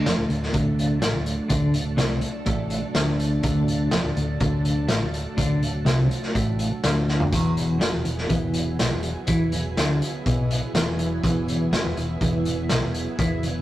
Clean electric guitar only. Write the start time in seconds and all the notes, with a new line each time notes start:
0.07 F2
0.18 D2
0.29 D2
0.53 D2
1.01 A2
1.14 D2
1.49 D3
1.75 D2
1.97 C3
2.22 muted clean electric guitar stroke
2.46 A2
2.82 muted clean electric guitar stroke
2.94 D2
3.43 D2
3.92 F2
4.05 D2
4.17 D2
4.41 D2
4.89 A2
5.02 D2
5.37 D3
5.62 D2
5.85 C3
6.10 muted clean electric guitar stroke
6.35 A2
6.72 muted clean electric guitar stroke
6.84 D2
7.33 E2
7.80 F#2
7.93 E2
8.05 E2
8.29 E2
8.79 B2
8.93 E2
9.28 E3
9.54 E2
9.78 D3
10.01 muted clean electric guitar stroke
10.27 B2
10.63 muted clean electric guitar stroke
10.75 E2
11.24 E2
11.73 F#2
11.85 E2
11.98 E2
12.22 E2
12.71 B2
12.83 E2
13.19 E3
13.44 E2